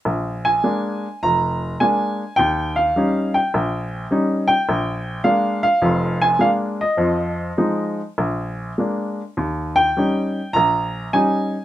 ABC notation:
X:1
M:4/4
L:1/8
Q:"Swing" 1/4=103
K:Bbmix
V:1 name="Upright piano"
z a3 b2 a2 | g f2 g3 z g- | g2 f f2 a f e- | e3 z4 z |
z g3 b2 a2 |]
V:2 name="Upright piano" clef=bass
B,,,2 [A,B,D] z F,,,2 [A,B,D] z | E,,2 [G,_DE] z B,,,2 [G,DE] z | B,,,2 [A,B,D] z [F,,,F,,]2 [A,B,D] z | [F,,F,]2 [F,A,E] z B,,,2 [A,B,D] z |
E,,2 [G,_DE] z B,,,2 [G,DE] z |]